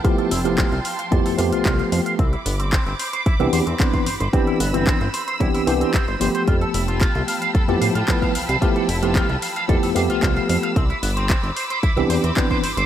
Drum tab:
HH |xxoxxxoxxooxxxox|xxoxxxoxxxoxxxox|xxoxxxoxxooxxxox|xxoxxxoxxxoxxxox|
CP |----x-------x---|----x-------x---|----x-------x---|----x-------x---|
BD |o---o---o---o---|o---o---o---oo--|o---o---o---o---|o---o---o---oo--|

HH |xxoxxxoxxooxxxox|xxoxxxoxxxoxxxox|
CP |----x-------x---|----x-------x---|
BD |o---o---o---o---|o---o---o---oo--|